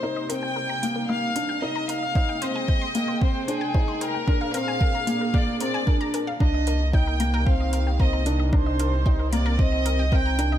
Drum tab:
HH |-x-x-x-x|-x-x-x-x|-x-x-x-x|-x-x-x-x|
BD |--------|o-o-o-o-|o-o-o-o-|o-o-o-o-|

HH |-x-x-x-x|
BD |o-o-o-o-|